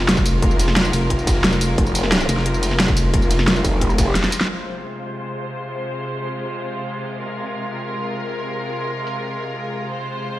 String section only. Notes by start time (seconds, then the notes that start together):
Already playing: C3 G#3 F4 A#4
4.49 C3 G#3 F4 C5
7.20 A#4
9.92 C5